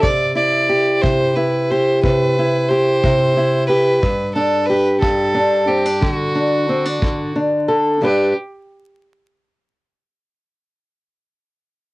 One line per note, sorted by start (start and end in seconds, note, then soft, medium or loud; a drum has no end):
0.02 1.01 C3 medium
0.02 0.33 D5 loud
0.02 kick medium
0.35 1.35 E4 medium
0.35 1.02 D5 loud
0.69 1.70 G4 medium
1.01 2.03 C3 medium
1.01 1.36 C5 loud
1.01 kick medium
1.35 2.36 E4 medium
1.35 1.71 B4 medium
1.70 2.69 G4 medium
1.70 2.02 C5 medium
2.02 3.03 C3 medium
2.02 2.70 B4 loud
2.02 kick medium
2.39 3.36 E4 medium
2.68 3.68 G4 medium
2.68 3.66 C5 loud
3.03 4.00 C3 medium
3.03 kick medium
3.37 3.99 E4 medium
3.66 3.99 G4 medium
3.66 4.31 B4 medium
4.02 5.00 G2 medium
4.02 kick medium
4.35 5.33 D4 medium
4.35 4.67 A4 medium
4.66 5.99 G4 medium
4.66 4.99 B4 medium
5.00 6.02 G2 medium
5.00 5.69 A4 medium
5.00 kick medium
5.35 5.68 D4 medium
5.67 5.86 C4 medium
5.67 6.00 G4 medium
5.86 6.02 D4 medium
6.00 7.01 D3 medium
6.00 6.11 G4 medium
6.00 kick medium
6.11 7.34 F#4 medium
6.35 6.68 D4 medium
6.69 6.85 C4 medium
6.85 7.34 D4 medium
7.02 8.02 D3 medium
7.02 kick medium
7.36 7.98 D4 medium
7.68 8.02 A4 medium
8.01 8.31 G2 medium
8.01 8.32 G3 medium
8.01 8.33 D4 medium
8.01 8.34 G4 medium
8.01 8.33 G4 medium
8.01 8.33 B4 medium